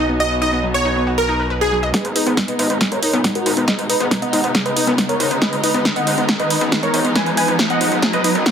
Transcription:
Already playing: B1 B3 D#4 F#4
0.09 B3
0.20 F#4 D#5
0.41 D#4 D#5
0.52 B3
0.63 F#3
0.74 B3 C#5
0.85 D#4
0.96 B3
1.07 F#4
1.18 A#4
1.28 D#4
1.39 B4
1.50 B4
1.61 F#4 G#4
1.72 F#3
1.83 D#5
1.94 G#3 B3 D#4 G#4 B4, kick, snare, closed hi-hat, riser
2.05 G#1, closed hi-hat
2.16 D#4 G#4 B4, open hi-hat
2.26 G#1 B3, closed hi-hat
2.37 G#3, kick, snare, closed hi-hat
2.48 B3 B4 D#5, closed hi-hat
2.59 G#1 D#4, open hi-hat
2.70 G#1 B3, closed hi-hat
2.81 G#4, kick, snare, closed hi-hat
2.92 G#1 A#4 C#5, closed hi-hat
3.03 D#4, open hi-hat
3.13 F#1 B3, closed hi-hat
3.24 G#3, kick, snare, closed hi-hat
3.35 B3 F#4 A#4, closed hi-hat
3.46 G#1 D#4, open hi-hat
3.57 G#1 B3, closed hi-hat
3.68 G#4 B4 D#5, kick, snare, closed hi-hat
3.79 G#1, closed hi-hat
3.89 D#4 B4 D#5, open hi-hat
4.00 G#1 B3, closed hi-hat
4.11 G#3, kick, snare, closed hi-hat
4.22 B3 D#5 F#5, closed hi-hat
4.33 G#1 D#4, open hi-hat
4.44 G#1 B3, closed hi-hat
4.55 G#4, kick, snare, closed hi-hat
4.65 G#1 B4 D#5, closed hi-hat
4.76 D#4, open hi-hat
4.87 F#1 B3, closed hi-hat
4.98 G#3, kick, snare, closed hi-hat
5.09 B3 A#4 C#5, closed hi-hat
5.20 G#1 D#4, open hi-hat
5.31 G#1 B3, closed hi-hat
5.42 G#4 B4 D#5, kick, snare, closed hi-hat
5.53 G#1, closed hi-hat
5.63 D#4 B4 D#5, open hi-hat
5.74 G#1 B3, closed hi-hat
5.85 G#3, kick, snare, closed hi-hat
5.96 B3 D#5 F#5, closed hi-hat
6.07 G#1 D#4, open hi-hat
6.18 G#1 B3, closed hi-hat
6.29 G#4, kick, snare, closed hi-hat
6.39 G#1 B4 D#5, closed hi-hat
6.50 D#4, open hi-hat
6.61 F#1 B3, closed hi-hat
6.72 G#3, kick, snare, closed hi-hat
6.83 B3 A#4 C#5, closed hi-hat
6.94 G#1 D#4, open hi-hat
7.04 G#1 B3, closed hi-hat
7.15 G#4 B4 G#5, kick, snare, closed hi-hat
7.26 G#1, closed hi-hat
7.37 D#4 B4 G#5, open hi-hat
7.48 G#1 B3, closed hi-hat
7.59 G#3, kick, snare, closed hi-hat
7.70 B3 D#5 F#5, closed hi-hat
7.81 G#1 D#4, open hi-hat
7.92 G#1 B3, closed hi-hat
8.02 G#4, kick, snare, closed hi-hat
8.13 G#1 B4 D#5, closed hi-hat
8.24 D#4, open hi-hat
8.35 F#1 B3, closed hi-hat
8.46 G#3, kick, snare, closed hi-hat

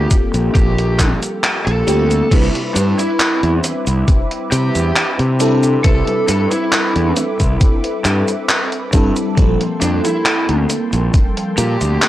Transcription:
Already playing: G3 A#3 C4 F4 G4 A4 G5
0.11 kick, closed hi-hat, cabasa
0.34 A#1, closed hi-hat, cabasa
0.55 A#1 G4, kick, closed hi-hat, cabasa
0.78 closed hi-hat
0.99 kick, clap, closed hi-hat, cabasa
1.23 closed hi-hat, cabasa
1.44 clap, closed hi-hat, cabasa
1.66 A#1 A4, closed hi-hat
1.86 D2 G3 A#3 C4 F4 G4, closed hi-hat, cabasa
2.11 closed hi-hat, cabasa
2.30 C2 G3 C4 D4 E4 B4 E5 B5 D6, kick, closed hi-hat, crash, cabasa
2.55 closed hi-hat
2.75 G2 D4, closed hi-hat, cabasa
2.98 E4, closed hi-hat, cabasa
3.20 clap, closed hi-hat, cabasa
3.43 E2, closed hi-hat
3.64 closed hi-hat, cabasa
3.87 C2, closed hi-hat, cabasa
4.08 kick, closed hi-hat, cabasa
4.31 closed hi-hat
4.52 C3 G4, closed hi-hat, cabasa
4.75 E2, closed hi-hat, cabasa
4.96 clap, closed hi-hat, cabasa
5.19 C3, closed hi-hat
5.40 G3 C4 D4 E4 A4, closed hi-hat, cabasa
5.63 closed hi-hat, cabasa
5.83 C2 G3 C4 D4 E4 A4 B4, kick, closed hi-hat, cabasa
6.07 closed hi-hat
6.28 G2 A4, closed hi-hat, cabasa
6.51 E4, closed hi-hat, cabasa
6.72 clap, closed hi-hat, cabasa
6.96 E2, closed hi-hat
7.17 closed hi-hat, cabasa
7.40 C2, kick, closed hi-hat, cabasa
7.61 kick, closed hi-hat, cabasa
7.84 closed hi-hat
8.05 G2, clap, closed hi-hat, cabasa
8.28 closed hi-hat, cabasa
8.49 clap, closed hi-hat, cabasa
8.72 closed hi-hat
8.93 G2 G3 C4 D4 E4 A4, kick, closed hi-hat, cabasa
9.16 closed hi-hat, cabasa
9.36 A#1 F3 G3 A#3 C4 A4 G5 A5 C6, kick, closed hi-hat, cabasa
9.61 closed hi-hat
9.81 F2 D4, closed hi-hat, cabasa
10.05 E4, closed hi-hat, cabasa
10.26 clap, closed hi-hat, cabasa
10.49 D2, closed hi-hat
10.70 closed hi-hat, cabasa
10.93 A#1, closed hi-hat, cabasa
11.14 kick, closed hi-hat, cabasa
11.37 closed hi-hat
11.58 A#2 G4, closed hi-hat, cabasa
11.81 D2, closed hi-hat, cabasa
12.02 clap, closed hi-hat, cabasa

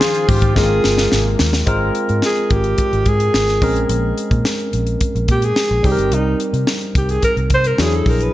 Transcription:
Already playing: D#3 F3 C#4 D#4 F4 G#4 C5
0.01 snare
0.15 closed hi-hat
0.29 G#2 G4, kick, open hi-hat
0.42 kick, closed hi-hat
0.55 G#1 C3 G#3 A#3 F4 G#4 A#4, kick, snare
0.62 C4
0.84 G1, snare
0.98 snare
1.12 G#1, snare
1.39 D#2, snare
1.53 snare
1.66 G#1 G#3 C4 F4 A#4, kick, closed hi-hat
1.95 closed hi-hat
2.09 G#2, closed hi-hat
2.22 G#4, snare
2.36 closed hi-hat
2.50 G#1 G4, kick, closed hi-hat
2.64 closed hi-hat
2.78 kick, closed hi-hat
2.93 G#1, closed hi-hat
3.06 G#2 G#4, kick, closed hi-hat
3.20 closed hi-hat
3.34 G#1, snare
3.48 snare, closed hi-hat
3.61 A#1 G#3 C4 C#4 A#4, kick, open hi-hat
3.76 closed hi-hat
3.89 A#1, closed hi-hat
4.18 closed hi-hat
4.31 A#2, kick, closed hi-hat
4.45 snare
4.59 closed hi-hat
4.73 A#1, closed hi-hat
4.87 closed hi-hat
5.01 kick, closed hi-hat
5.15 A#1, closed hi-hat
5.28 A#2 G4, kick, closed hi-hat
5.42 G#4, closed hi-hat
5.56 snare
5.71 A#1
5.83 C2 G3 C4 D#4 G#4, kick, open hi-hat
5.87 G4
5.92 A#4
5.98 G1, closed hi-hat
6.12 C2 D#4, closed hi-hat
6.40 closed hi-hat
6.53 C3, closed hi-hat
6.67 snare
6.81 closed hi-hat
6.95 C2 G4, kick, closed hi-hat
7.09 G#4, closed hi-hat
7.22 A#4, kick, closed hi-hat
7.37 C2, closed hi-hat
7.50 C3, kick, closed hi-hat
7.54 C5
7.64 A#4, closed hi-hat
7.78 E2 F#3 D4 E4 F#4 G#4, snare
7.86 G#4
7.92 A4, closed hi-hat
8.06 A#1 A#4, kick, open hi-hat
8.21 B4, closed hi-hat

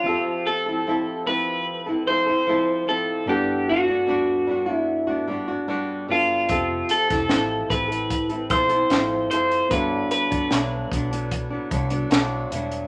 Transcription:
Already playing: F4
0.04 F3 C4 G4 E5
0.08 A4
0.47 A4
0.66 C4 E4 A4
0.87 F3 C4 E4 A4
1.26 F3 C4 E4 B4
1.30 A4
1.86 C4 E4 A4
2.06 F3 C4 E4 C5
2.10 A4
2.26 E4 A4
2.31 C4
2.47 F3 C4 E4 A4
2.87 F3 C4 E4 A4
3.26 G2 G3 B3 D4 G4 F#5
3.31 A4
3.69 F#4
3.87 B3 D4 F#4
4.07 G3 B3 D4 F#4
4.47 G3 B3 D4 F#4
4.66 D4 F#4
4.70 B3 E4
5.07 D4 F#4
5.11 B3
5.27 G3 B3 D4 F#4
5.48 D4 F#4
5.52 B3
5.68 G3 B3 D4 F#4
6.08 G2 F#3 G3 B3 D4 F4 A4
6.48 F1 F3 C4 G4 A4 E5, kick, closed hi-hat
6.53 A4
6.89 A4, closed hi-hat
7.09 F1 E4 A4, kick, snare, closed hi-hat
7.13 C4
7.28 A1 F3 C4 E4 A4, snare, closed hi-hat
7.69 A1 F3 C4 E4 A4 B4, kick, closed hi-hat
7.88 E4 A4, closed hi-hat
7.92 C4
8.10 kick, closed hi-hat
8.29 C4 E4 A4, closed hi-hat
8.50 B1 F3 C4 E4 A4 C5, kick, closed hi-hat
8.69 E4 A4, closed hi-hat
8.74 C4
8.90 A1 F3 C4 E4 A4, snare, closed hi-hat
9.30 F#1 F3 C4 E4 C5, closed hi-hat
9.34 A4
9.51 closed hi-hat
9.69 G1 G2 F#3 B3 D4 F#4 B4, kick, closed hi-hat
9.74 A4
10.11 B4, closed hi-hat
10.30 G1 B3 D4, kick, closed hi-hat
10.34 F#3
10.51 B1 G2 F#3 B3 D4, snare, closed hi-hat
10.91 B1 G2 F#3 B3 D4, kick, closed hi-hat
11.11 F#3 B3 D4, closed hi-hat
11.31 kick, closed hi-hat
11.50 F#3 B3 D4
11.71 C2 G2 F#3 B3 D4, kick, closed hi-hat
11.90 B3 D4, closed hi-hat
11.94 F#3
12.10 B1 G2 F#3 B3 D4, snare, closed hi-hat
12.51 E1 G2 F#3 B3, closed hi-hat
12.55 D4
12.72 closed hi-hat

